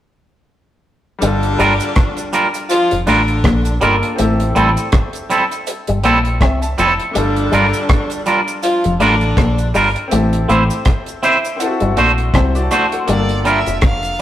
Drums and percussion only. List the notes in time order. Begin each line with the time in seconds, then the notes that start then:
1.22 closed hi-hat, cabasa
1.43 closed hi-hat
1.60 closed hi-hat, cabasa
1.80 closed hi-hat, cabasa
1.96 kick, cross-stick, closed hi-hat
2.17 closed hi-hat, cabasa
2.33 closed hi-hat, cabasa
2.54 closed hi-hat, cabasa
2.69 closed hi-hat, cabasa
2.91 closed hi-hat
3.07 closed hi-hat, cabasa
3.28 closed hi-hat
3.44 kick, cross-stick, closed hi-hat
3.65 closed hi-hat, cabasa
3.81 closed hi-hat, cabasa
4.03 closed hi-hat
4.18 closed hi-hat, cabasa
4.40 closed hi-hat
4.56 closed hi-hat, cabasa
4.77 closed hi-hat, cabasa
4.92 kick, cross-stick, closed hi-hat
5.13 closed hi-hat, cabasa
5.30 closed hi-hat, cabasa
5.51 closed hi-hat, cabasa
5.67 closed hi-hat, cabasa
5.87 closed hi-hat
6.04 closed hi-hat, cabasa
6.25 closed hi-hat
6.41 kick, cross-stick, closed hi-hat
6.62 closed hi-hat, cabasa
6.78 closed hi-hat, cabasa
7.00 closed hi-hat
7.15 closed hi-hat, cabasa
7.36 closed hi-hat
7.53 closed hi-hat, cabasa
7.74 closed hi-hat, cabasa
7.89 kick, cross-stick, closed hi-hat
8.10 closed hi-hat, cabasa
8.26 closed hi-hat, cabasa
8.48 closed hi-hat, cabasa
8.63 closed hi-hat, cabasa
8.84 closed hi-hat
9.00 closed hi-hat, cabasa
9.21 closed hi-hat
9.37 kick, cross-stick, closed hi-hat
9.58 closed hi-hat, cabasa
9.74 open hi-hat, cabasa
9.96 closed hi-hat
10.11 closed hi-hat, cabasa
10.33 closed hi-hat
10.49 closed hi-hat, cabasa
10.70 closed hi-hat, cabasa
10.85 kick, cross-stick, closed hi-hat
11.06 closed hi-hat, cabasa
11.23 closed hi-hat, cabasa
11.45 closed hi-hat, cabasa
11.60 closed hi-hat, cabasa
11.80 closed hi-hat
11.97 closed hi-hat, cabasa
12.18 closed hi-hat
12.34 kick, cross-stick, closed hi-hat
12.55 closed hi-hat, cabasa
12.71 cross-stick, closed hi-hat, cabasa
12.92 closed hi-hat
13.08 closed hi-hat, cabasa
13.29 closed hi-hat
13.45 closed hi-hat, cabasa
13.66 closed hi-hat, cabasa
13.81 kick, cross-stick, closed hi-hat
14.03 closed hi-hat, cabasa